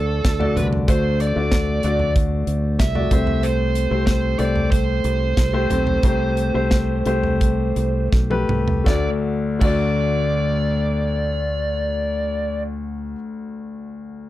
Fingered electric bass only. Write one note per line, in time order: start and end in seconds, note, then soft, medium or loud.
0.00 0.22 D2 medium
0.25 0.58 D2 medium
0.57 0.86 C2 medium
0.88 1.33 D2 medium
1.36 1.81 D2 medium
1.84 2.44 D2 medium
2.47 2.77 D2 medium
2.80 3.09 C2 medium
3.11 3.87 C2 medium
3.91 4.36 C2 medium
4.39 5.00 C2 medium
5.04 5.35 C2 medium
5.37 5.68 C2 medium
5.70 6.01 B1 medium
6.03 6.51 C2 medium
6.54 7.02 C2 medium
7.06 7.72 C2 medium
7.76 8.10 C2 medium
8.12 8.46 B1 medium
8.49 8.84 C2 medium
8.86 9.07 D2 medium
9.61 13.14 D2 medium